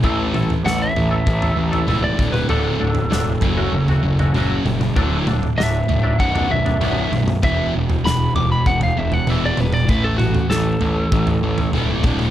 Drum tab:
SD |----o-----------|----o-----------|----o-----------|----o-----------|
T2 |--o---------o-oo|------------o-oo|--o---------o-oo|------------o-oo|
FT |o--o--o--o-o----|o--o--o--o-o----|o--o--o--o-o----|o--o--o--o-o----|
BD |o-------o-----o-|------o---------|o-------o-------|o-------o-------|

SD |----o-----------|
T2 |--o---------o-oo|
FT |o--o--o--o-o----|
BD |o-------o-----o-|